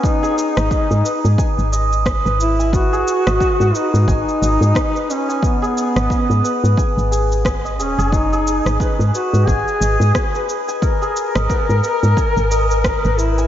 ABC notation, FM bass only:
X:1
M:4/4
L:1/16
Q:"Swing 16ths" 1/4=89
K:G#m
V:1 name="FM bass" clef=bass
z3 G,,, z G,, z G,, z G,,,4 G,,,3- | G,,,2 z G,,, z G,, z G,, G,,, z G,,, G,, z4 | z3 G,,, z G,, z G,, z G,,,4- G,,, D,,, F,,,- | F,,,3 G,,, z G,, z G,, G,,, z G,,, G,, z4 |
z3 G,,, z G,, z G,, z G,,,4 G,,,3 |]